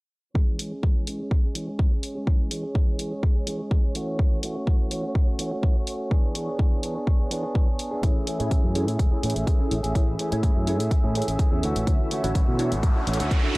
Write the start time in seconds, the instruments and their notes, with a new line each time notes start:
0.35 clean electric guitar E3 G#3 C#4 G#4, kick
0.59 clean electric guitar E3 G#3 C#4 G#4, open hi-hat
0.71 clean electric guitar G#3 C#4 G#4
0.83 clean electric guitar E3 G#3 G#4, kick
1.07 clean electric guitar E3 G#3 C#4 G#4, open hi-hat
1.19 clean electric guitar G#3 C#4 G#4
1.31 kick
1.43 clean electric guitar G#3 C#4 G#4
1.55 clean electric guitar E3 G#3 C#4 G#4, open hi-hat
1.67 clean electric guitar G#3 C#4 G#4
1.79 clean electric guitar E3 G#3 C#4, kick
1.91 clean electric guitar G#3 C#4 G#4
2.03 open hi-hat
2.15 clean electric guitar G#3 C#4 G#4
2.27 clean electric guitar E3 G#3 C#4, kick
2.50 clean electric guitar E3 G#3 C#4 G#4, open hi-hat
2.63 clean electric guitar G#3 C#4 G#4
2.74 clean electric guitar E3 G#3 C#4, kick
2.98 clean electric guitar E3 G#3 C#4 G#4, open hi-hat
3.11 clean electric guitar G#3 C#4 G#4
3.23 kick
3.35 clean electric guitar G#3 C#4 G#4
3.46 clean electric guitar E3 G#3 C#4 G#4, open hi-hat
3.59 clean electric guitar G#3 C#4 G#4
3.71 clean electric guitar E3 G#3 C#4 G#4, kick
3.83 clean electric guitar G#3 C#4 G#4
3.95 clean electric guitar E3 A3 C#4 F#4, open hi-hat
4.19 kick
4.42 clean electric guitar E3 A3 C#4 F#4, open hi-hat
4.55 clean electric guitar A3 C#4 F#4
4.67 clean electric guitar E3 F#4, kick
4.90 clean electric guitar E3 A3 C#4 F#4, open hi-hat
5.03 clean electric guitar A3 C#4 F#4
5.15 kick
5.27 clean electric guitar A3 C#4 F#4
5.38 clean electric guitar E3 A3 C#4 F#4, open hi-hat
5.51 clean electric guitar A3 C#4 F#4
5.63 clean electric guitar E3, kick
5.75 clean electric guitar A3 C#4 F#4
5.87 open hi-hat
6.11 clean electric guitar E3 B3 D4 G#4, kick
6.34 clean electric guitar E3 B3 D4 G#4, open hi-hat
6.47 clean electric guitar B3 D4 G#4
6.59 clean electric guitar E3 G#4, kick
6.82 clean electric guitar E3 B3 D4 G#4, open hi-hat
6.95 clean electric guitar B3 D4 G#4
7.07 kick
7.19 clean electric guitar B3 D4 G#4
7.30 clean electric guitar E3 B3 D4 G#4, open hi-hat
7.43 clean electric guitar B3 D4 G#4
7.55 clean electric guitar E3 B3, kick
7.67 clean electric guitar B3 D4 G#4
7.79 open hi-hat
7.91 clean electric guitar B3 D4 G#4
8.02 fingered electric bass A1, clean electric guitar E3 A3 G#4, analog polysynth A3 C#4 E4 G#4 C#5, string section E5, kick, closed hi-hat
8.26 clean electric guitar E3 A3 C#4 G#4, open hi-hat
8.39 fingered electric bass A2, analog polysynth A3 C#4 E4 G#4 C#5, clean electric guitar A3 C#4 G#4, closed hi-hat
8.50 clean electric guitar E3, kick, closed hi-hat
8.64 fingered electric bass F#2
8.74 clean electric guitar E3 A3 C#4 G#4, analog polysynth C#4 E4 G#4 A4 C#5, open hi-hat
8.87 fingered electric bass A2, clean electric guitar A3 C#4 G#4, closed hi-hat
8.99 fingered electric bass E1, kick, closed hi-hat
9.11 clean electric guitar A3 C#4 G#4, analog polysynth C#4 E4 G#4 A4 C#5
9.22 fingered electric bass A2, clean electric guitar E3 A3 C#4 G#4, open hi-hat
9.30 closed hi-hat
9.35 fingered electric bass A1, clean electric guitar A3 C#4 G#4, closed hi-hat
9.47 clean electric guitar E3 A3 G#4, kick, closed hi-hat
9.59 clean electric guitar A3 C#4 G#4, analog polysynth C#4 E4 G#4 A4 C#5
9.71 fingered electric bass A1, open hi-hat
9.83 fingered electric bass A1, clean electric guitar A3 C#4 G#4, closed hi-hat
9.95 clean electric guitar E3, analog polysynth A3 C#4 E4 G#4 C#5, kick, closed hi-hat
10.18 clean electric guitar E3 A3 C#4 G#4, open hi-hat
10.31 fingered electric bass A2, analog polysynth A3 C#4 E4 G#4 C#5, clean electric guitar A3 C#4 G#4, closed hi-hat
10.43 clean electric guitar E3 A3 C#4 G#4, kick, closed hi-hat
10.56 fingered electric bass F#2
10.67 clean electric guitar E3 A3 C#4 G#4, analog polysynth C#4 E4 G#4 A4 C#5, open hi-hat
10.79 fingered electric bass A2, clean electric guitar A3 C#4 G#4, closed hi-hat
10.91 kick, closed hi-hat
11.03 fingered electric bass A2, clean electric guitar A3 C#4 G#4, analog polysynth C#4 E4 G#4 A4 C#5
11.14 clean electric guitar E3 A3 C#4 G#4, open hi-hat
11.22 closed hi-hat
11.27 fingered electric bass A1, clean electric guitar A3 C#4 G#4, closed hi-hat
11.39 clean electric guitar E3 A3 C#4 G#4, kick, closed hi-hat
11.51 fingered electric bass E2, clean electric guitar A3 C#4 G#4, analog polysynth C#4 E4 G#4 A4 C#5
11.63 fingered electric bass D2, clean electric guitar E3 A3 C#4 F#4, open hi-hat
11.76 fingered electric bass A1, closed hi-hat
11.87 fingered electric bass D2, analog polysynth D3 E4 F#4 A4 C#5, kick, closed hi-hat, riser
12.10 clean electric guitar E3 A3 C#4 F#4, open hi-hat
12.23 fingered electric bass A1, analog polysynth D3 E4 F#4 A4 C#5, clean electric guitar C#4 F#4, closed hi-hat
12.35 clean electric guitar E3 A3 C#4 F#4, kick, closed hi-hat
12.48 fingered electric bass B2
12.59 clean electric guitar E3 A3 C#4 F#4, analog polysynth D4 E4 F#4 A4 C#5, open hi-hat
12.71 fingered electric bass A1, clean electric guitar A3 C#4 F#4, closed hi-hat
12.83 kick, closed hi-hat
12.95 clean electric guitar A3 C#4 F#4, analog polysynth D4 E4 F#4 A4 C#5
13.07 fingered electric bass A1, clean electric guitar E3 A3 C#4 F#4, open hi-hat
13.14 closed hi-hat
13.19 fingered electric bass D2, clean electric guitar A3 C#4 F#4, closed hi-hat
13.31 clean electric guitar E3 A3 C#4, kick, closed hi-hat
13.43 clean electric guitar A3 C#4 F#4, analog polysynth D4 E4 F#4 A4 C#5